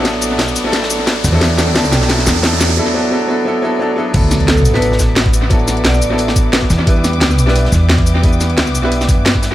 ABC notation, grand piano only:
X:1
M:4/4
L:1/16
Q:"Swing 16ths" 1/4=176
K:D
V:1 name="Grand piano"
[F,B,DEA]6- [F,B,DEA] [F,B,DEA] [F,B,DEA]6- [F,B,DEA] [F,B,DEA] | [F,B,DEA]4 [F,B,DEA]4 [F,B,DEA]4 [F,B,DEA]4 | [F,B,DEA]2 [F,B,DEA]2 [F,B,DEA]2 [F,B,DEA]2 [F,B,DEA]2 [F,B,DEA]2 [F,B,DEA]2 [F,B,DEA]2 | [F,B,DEA]6- [F,B,DEA] [F,B,DEA]8- [F,B,DEA] |
[F,B,DEA]6- [F,B,DEA] [F,B,DEA]6- [F,B,DEA] z2 | [G,B,DEB]6- [G,B,DEB] [G,B,DEB]8- [G,B,DEB] | [G,B,DEB]6- [G,B,DEB] [G,B,DEB]8- [G,B,DEB] |]